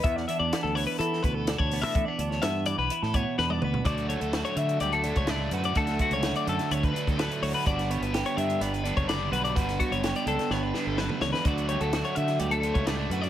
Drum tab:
HH |x-x-x-o-x-x-x-o-|x-x-x-x-x-x-----|xxxxxxxxxxxxx-xx|xxxxxxxxxxxxxxo-|
SD |-o--o----o--o---|---oo----o--o---|----o-------o---|-o--o--o----o---|
T1 |----------------|-------------o--|----------------|----------------|
T2 |----------------|--------------o-|----------------|----------------|
FT |----------------|---------------o|----------------|----------------|
BD |o---------o--o--|o---------o-----|o----------o----|o-o------o-o----|

HH |xxxxxxxxxxxxx-xx|xxxxxxxx--------|xxxxxxxxxxxxx-xx|
SD |-o--o-------o---|-o--o--oo-o-o-oo|----o--o----o---|
T1 |----------------|----------------|----------------|
T2 |----------------|-------------o--|----------------|
FT |----------------|----------------|----------------|
BD |o----------o----|o-o-------------|o----------o----|